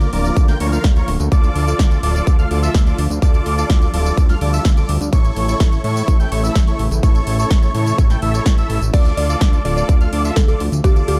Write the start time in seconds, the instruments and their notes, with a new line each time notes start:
Already playing: analog synth pad D3 F3 A#3 F4
0.01 closed hi-hat, tambourine
0.13 analog synth bass D1, supersaw synth F4 A#4 D5, analog synth lead D6, open hi-hat
0.25 closed hi-hat, tambourine
0.36 analog synth bass D2, kick, closed hi-hat, tambourine
0.48 supersaw synth F4 A#4 G5, analog synth lead G6, snare, closed hi-hat, tambourine
0.60 analog synth bass D2, supersaw synth F4 A#4 C#5, analog synth lead C#6, open hi-hat
0.72 supersaw synth F4 A#4 F5, analog synth lead F6, closed hi-hat, tambourine
0.84 analog synth bass D2, kick, snare, closed hi-hat, tambourine
0.96 supersaw synth F4 A#4 C#5, analog synth lead C#6, closed hi-hat, tambourine
1.08 analog synth bass D1, open hi-hat
1.20 analog synth bass D2, closed hi-hat, tambourine
1.32 analog synth bass D2, analog synth pad A3 F4, supersaw synth F4 A4 D5, analog synth lead D6, kick, closed hi-hat, tambourine
1.44 closed hi-hat, tambourine
1.55 analog synth bass D2, open hi-hat
1.67 supersaw synth F4 A4 D5, analog synth lead D6, tambourine
1.79 analog synth bass D2, kick, snare, closed hi-hat, tambourine
1.91 closed hi-hat, tambourine
2.03 analog synth bass D1, supersaw synth F4 A4 D5, analog synth lead D6, open hi-hat
2.15 closed hi-hat, tambourine
2.27 analog synth bass D2, kick, closed hi-hat, tambourine
2.39 supersaw synth F4 A4 F5, analog synth lead F6, closed hi-hat, tambourine
2.51 analog synth bass D2, supersaw synth F4 A4 D5, analog synth lead D6, open hi-hat
2.63 supersaw synth F4 A4 E5, analog synth lead E6, closed hi-hat, tambourine
2.74 analog synth bass D2, kick, snare, closed hi-hat, tambourine
2.87 supersaw synth F4 A4 D5, analog synth lead D6, closed hi-hat, tambourine
2.98 analog synth bass D2, open hi-hat
3.10 analog synth bass D2, closed hi-hat, tambourine
3.22 analog synth bass D2, analog synth pad G3, supersaw synth F4 A4 D5, analog synth lead D6, kick, closed hi-hat, tambourine
3.34 closed hi-hat, tambourine
3.46 analog synth bass D2, open hi-hat
3.58 supersaw synth F4 A4 D5, analog synth lead D6, closed hi-hat, tambourine
3.70 analog synth bass D2, kick, snare, closed hi-hat, tambourine
3.82 closed hi-hat, tambourine
3.94 analog synth bass D1, supersaw synth F4 A4 D5, analog synth lead D6, open hi-hat
4.06 closed hi-hat, tambourine
4.17 analog synth bass D2, kick, closed hi-hat, tambourine
4.29 supersaw synth F4 A4 F5, analog synth lead F6, snare, closed hi-hat, tambourine
4.41 analog synth bass D2, supersaw synth F4 A4 D5, analog synth lead D6, open hi-hat
4.53 supersaw synth F4 A4 E5, analog synth lead E6, closed hi-hat, tambourine
4.65 analog synth bass D2, kick, snare, closed hi-hat, tambourine
4.77 supersaw synth F4 A4 D5, analog synth lead D6, closed hi-hat, tambourine
4.89 analog synth bass D2, open hi-hat
5.01 analog synth bass D2, closed hi-hat, tambourine
5.13 analog synth bass A1, analog synth pad C#3 E3 A3 E4, supersaw synth E4 A4 C#5, analog synth lead C#6, kick, closed hi-hat, tambourine
5.25 closed hi-hat, tambourine
5.36 analog synth bass A1, open hi-hat
5.48 supersaw synth E4 A4 C#5, analog synth lead C#6, closed hi-hat, tambourine
5.60 analog synth bass A1, kick, snare, closed hi-hat, tambourine
5.72 closed hi-hat, tambourine
5.84 analog synth bass A2, supersaw synth E4 A4 C#5, analog synth lead C#6, open hi-hat
5.96 closed hi-hat, tambourine
6.08 analog synth bass A1, kick, closed hi-hat, tambourine
6.20 supersaw synth E4 A4 G5, analog synth lead G6, closed hi-hat, tambourine
6.32 analog synth bass A1, supersaw synth E4 A4 C#5, analog synth lead C#6, open hi-hat
6.44 supersaw synth E4 A4 E5, analog synth lead E6, closed hi-hat, tambourine
6.55 analog synth bass A1, kick, snare, closed hi-hat, tambourine
6.67 supersaw synth E4 A4 C#5, analog synth lead C#6, closed hi-hat, tambourine
6.79 analog synth bass A1, open hi-hat
6.91 analog synth bass A1, closed hi-hat, tambourine
7.03 analog synth bass A1, supersaw synth E4 A4 C#5, analog synth lead C#6, kick, closed hi-hat, tambourine
7.15 closed hi-hat, tambourine
7.27 analog synth bass A1, open hi-hat
7.39 supersaw synth E4 A4 C#5, analog synth lead C#6, closed hi-hat, tambourine
7.51 analog synth bass A1, kick, snare, closed hi-hat, tambourine
7.63 closed hi-hat, tambourine
7.75 analog synth bass A2, supersaw synth E4 A4 C#5, analog synth lead C#6, open hi-hat
7.86 closed hi-hat, tambourine
7.98 analog synth bass A1, kick, closed hi-hat, tambourine
8.10 supersaw synth E4 A4 G5, analog synth lead G6, snare, closed hi-hat, tambourine
8.22 analog synth bass A1, supersaw synth E4 A4 E5, analog synth lead E6, open hi-hat
8.34 supersaw synth E4 A4 C#5, analog synth lead C#6, closed hi-hat, tambourine
8.46 analog synth bass A1, kick, snare, closed hi-hat, tambourine
8.58 supersaw synth E4 A4 E5, analog synth lead E6, closed hi-hat, tambourine
8.70 analog synth bass A1, open hi-hat
8.82 analog synth bass A1, closed hi-hat, tambourine
8.94 analog synth bass D2, analog synth pad D3 F3 A3 F4, supersaw synth F4 A4 D5, synth pluck D5, analog synth lead D6, kick, closed hi-hat, crash, tambourine
9.05 closed hi-hat, tambourine
9.17 analog synth bass D2, synth pluck D5, open hi-hat
9.29 supersaw synth F4 A4 D5, analog synth lead D6, closed hi-hat, tambourine
9.41 analog synth bass D2, kick, snare, closed hi-hat, tambourine
9.53 closed hi-hat, tambourine
9.65 analog synth bass D1, supersaw synth F4 A4 D5, synth pluck D5, analog synth lead D6, open hi-hat
9.77 synth pluck D5, closed hi-hat, tambourine
9.89 analog synth bass D2, kick, closed hi-hat, tambourine
10.01 supersaw synth F4 A4 F5, analog synth lead F6, closed hi-hat, tambourine
10.13 analog synth bass D2, supersaw synth F4 A4 D5, analog synth lead D6, open hi-hat
10.25 supersaw synth F4 A4 E5, analog synth lead E6, closed hi-hat, tambourine
10.36 analog synth bass D2, synth pluck A4, kick, snare, closed hi-hat, tambourine
10.48 supersaw synth F4 A4 D5, synth pluck A4, analog synth lead D6, closed hi-hat, tambourine
10.60 analog synth bass D2, open hi-hat
10.72 analog synth bass D2, closed hi-hat, tambourine
10.84 analog synth bass D2, supersaw synth F4 A4 D5, synth pluck G4, analog synth lead D6, kick, closed hi-hat, tambourine
10.96 closed hi-hat, tambourine
11.08 analog synth bass D2, synth pluck G4, open hi-hat